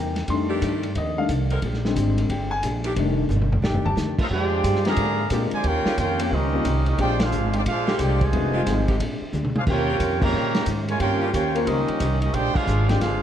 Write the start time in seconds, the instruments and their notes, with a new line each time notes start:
Already playing: upright bass E2, hollow-body jazz guitar C3 G3 A#3 D#4, upright piano G5
0.16 snare, ride
0.27 hollow-body jazz guitar F2 D#3 A3 D4, upright bass F2, upright piano D#3 G3 A3 D4 C6, kick, ride
0.49 saxophone section D#3 A3 D4 G4
0.61 hollow-body jazz guitar F2 D#3 A3 D4, upright bass G2, kick, hi-hat pedal, ride
0.83 ride
0.95 upright bass D#2, hollow-body jazz guitar F2 D#3 A3 D4, upright piano D#5, kick, ride
1.17 upright piano D#3 G3 A3 D4 F5
1.29 upright bass C2, hollow-body jazz guitar F2 D#3 A3 D4, kick, hi-hat pedal, ride
1.50 saxophone section D3 G#3 C4 A#4, ride
1.62 upright bass A#1, hollow-body jazz guitar A#2 G#3 D4 G4, kick, ride
1.74 snare
1.84 upright piano D3 G3 G#3 C4, snare
1.95 upright bass G#1, hollow-body jazz guitar A#2 G#3 D4 G4, kick, hi-hat pedal, ride
2.18 ride
2.29 upright bass G1, hollow-body jazz guitar A#2 G#3 D4 G4, upright piano G5, kick, ride
2.51 upright piano G#5
2.63 upright bass A#1, hollow-body jazz guitar A#2 G#3 D4 G4, kick, hi-hat pedal, ride
2.84 saxophone section D#3 A3 D4 G4, ride
2.95 upright bass F1, hollow-body jazz guitar F2 D#3 A3 D4, upright piano D#3 G3 A3 D4, kick, ride
3.29 upright bass G1, hollow-body jazz guitar F2 D#3 A3 D4, hi-hat pedal, mid tom
3.42 mid tom
3.52 floor tom
3.62 upright bass A1, hollow-body jazz guitar F2 D#3 A3 D4, saxophone section D#3 A3 D4 G4, upright piano G5, snare
3.73 upright bass F1, floor tom
3.85 upright bass D#1, upright piano A5, floor tom
3.96 upright bass D2, hollow-body jazz guitar F2 D#3 A3 D4, snare, hi-hat pedal
4.18 trombone section A3 C4 F4, trumpet section D#4 A4 C5 F5, muted upright bass stroke, kick, crash
4.30 upright bass F2, hollow-body jazz guitar A#2 G#3 D4 G4, trombone section G#3 D4 G4, trumpet section F4 C5 D5 G5, kick
4.64 upright bass G2, hollow-body jazz guitar A#2 G#3 D4 G4, kick, hi-hat pedal, ride
4.75 snare
4.85 trombone section D3 F3 A#3, saxophone section D3 G#3 C4 G4, upright piano G#3 C4 D4 F4 G4, trumpet section G#4 D5 F5 A#5, snare, ride
4.96 upright bass G#2, hollow-body jazz guitar A#2 G#3 D4 G4, kick, ride
5.30 upright bass A#2, hollow-body jazz guitar A#2 G#3 D4 G4, saxophone section D3 G#3 C4 G4, upright piano G#3 C4 D4 F4 A#4, kick, hi-hat pedal, ride
5.51 trombone section D3 F3 G#3, trumpet section F4 C5 D5 G#5, muted upright bass stroke, ride
5.64 upright bass D#2, hollow-body jazz guitar D#3 C#4 G4 C5, trombone section A#3 C#4 G4, trumpet section F4 A#4 C#5 G5, kick, ride
5.85 saxophone section C#3 G3 C4 F4, muted upright bass stroke, snare
5.98 upright bass F2, hollow-body jazz guitar D#3 C#4 G4 C5, trombone section A#3 C#4 G4, trumpet section F4 A#4 C#5 G5, kick, hi-hat pedal, ride
6.19 upright piano A#3 C4 C#4 F4 G4, ride
6.31 upright bass C#2, hollow-body jazz guitar D#3 C#4 G4 C5, trombone section G3 A#3 D#4, trumpet section C#4 G4 A#4 D#5, kick
6.54 upright piano A#3 C4 C#4 F4 G4
6.65 upright bass C2, hollow-body jazz guitar D#3 C#4 G4 C5, kick, hi-hat pedal, ride
6.86 trombone section G3 A#3 D#4, trumpet section C#4 G4 A#4 D#5, ride
6.97 upright bass A#1, hollow-body jazz guitar A#2 G#3 D4, trombone section G#3 D4 G4, upright piano G#3 C4 D4 F4 G4, kick, ride
7.01 trumpet section F4 C5 D5 G5, hollow-body jazz guitar G4
7.20 trombone section G#3 D4 F4, trumpet section D4 G#4 C5 F5, snare, ride
7.32 upright bass G#1, hollow-body jazz guitar A#2 G#3 D4 G4, hi-hat pedal
7.53 trombone section G#3 D4 G4, trumpet section D5, ride
7.57 trumpet section F4 C5 G5
7.65 upright bass A#1, hollow-body jazz guitar A#2 G#3 D4 G4, trombone section G#3 D4 F4, trumpet section F5, kick, ride
7.69 trumpet section D4 G#4 C5
7.87 saxophone section D3 G#3 C4 G4, snare
7.99 upright bass C2, hollow-body jazz guitar A#2 G#3 D4 G4, trombone section G#3 D4 G4, trumpet section C5 D5, kick, hi-hat pedal, ride
8.03 trumpet section F4 G5
8.20 trombone section C3 D#3 G#3, kick, ride
8.24 trumpet section F4 C5 D#5 G#5
8.32 upright bass F1, hollow-body jazz guitar F3 C4 D#4 G#4, upright piano G3 B3 D4 E4 F#4, kick, ride
8.53 saxophone section D#3 G#3 C4 F4, upright piano G3 G#3 C4 D#4 F4
8.66 upright bass G#1, hollow-body jazz guitar F3 C4 D#4 G#4, kick, snare, hi-hat pedal, ride
8.88 saxophone section D3 G#3 C4 G4, kick, ride
9.00 upright bass A#1, hollow-body jazz guitar A#2 G#3 D4 G4, kick, ride
9.21 muted upright bass stroke
9.33 upright bass D2, hollow-body jazz guitar A#2 G#3 D4 G4, hi-hat pedal, high tom
9.45 mid tom
9.55 trombone section G#3 D4 F4, trumpet section D4 G#4 C5 F5, mid tom
9.67 upright bass D#2, hollow-body jazz guitar D#3 C#4 G4 C5, upright piano A#3 C4 C#4 F4 G4, trombone section A#3 C#4 G4, trumpet section F4 A#4 C#5 G5, kick, crash
9.89 saxophone section C#3 G3 C4 F4
10.00 upright bass F2, hollow-body jazz guitar D#3 C#4 G4 C5, kick, hi-hat pedal, ride
10.21 trombone section C#3 G3 A#3, upright piano A#3 C#4 D#4 F4 G4, trumpet section G4 C#5 F5 A#5, kick, crash
10.33 upright bass A#2, hollow-body jazz guitar D#3 C#4 G4 C5
10.54 snare, ride
10.66 upright bass G#2, hollow-body jazz guitar D#3 C#4 G4 C5, kick, hi-hat pedal, ride
10.87 trombone section G#3, trumpet section F4 A#4 C#5 G#5, ride
10.97 upright bass G2, hollow-body jazz guitar D#3, trombone section A#3 C#4 G4, upright piano A#3 C4 C#4 F4 G4, trumpet section F4 A#4 G5, kick, ride
11.02 hollow-body jazz guitar C#4 G4 C5, trumpet section C#5
11.21 saxophone section C#3 G3 C4 F4
11.31 upright bass D#2, hollow-body jazz guitar D#3 C#4, trombone section A#3 C#4 G4, trumpet section F4 A#4 C#5 G5, kick, hi-hat pedal, ride
11.35 hollow-body jazz guitar G4 C5
11.55 upright piano A#3 C#4 F4 A#4 C5, ride
11.65 upright bass C#2, hollow-body jazz guitar D#3 C#4 G4 C5, trombone section G3 A#3 D#4, trumpet section C#4 G4 A#4 D#5, kick, ride
11.88 muted upright bass stroke, ride
12.00 upright bass C2, hollow-body jazz guitar D#3 C#4 G4 C5, kick, hi-hat pedal, ride
12.20 trombone section G3 A#3 D#4, trumpet section C#4 G4 A#4 D#5, ride
12.31 upright bass A#1, hollow-body jazz guitar A#2 G#3 D4, trombone section G#3 D4 G4, trumpet section F4 C5 D5 G5, kick, ride
12.36 hollow-body jazz guitar G4
12.53 trombone section G#3 D4 F4, trumpet section D4 G#4 C5 F5, muted upright bass stroke, kick, crash
12.66 upright bass G#1, hollow-body jazz guitar A#2 G#3 D4 G4, hi-hat pedal
12.87 trombone section G#3 D4 G4, upright piano G#3 C4 D4 F4 G4, trumpet section F4 C5 D5 G5, snare, ride
13.00 upright bass G1, hollow-body jazz guitar A#2 G#3 D4 G4, trombone section G#3 D4 F4, trumpet section D4 G#4 C5 F5, kick, snare, ride